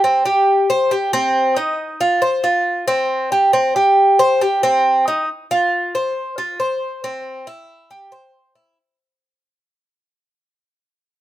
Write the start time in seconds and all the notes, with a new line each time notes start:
0.04 C4
0.26 G4
0.70 C5
0.91 G4
1.13 C4
1.57 D#4
2.01 F4
2.22 C5
2.44 F4
2.88 C4
3.32 G4
3.53 C4
3.76 G4
4.19 C5
4.41 G4
4.63 C4
5.08 D#4
5.51 F4
5.95 C5
6.38 F4
6.60 C5
7.04 C4
7.47 E4
7.91 G4
8.12 C5
8.55 E4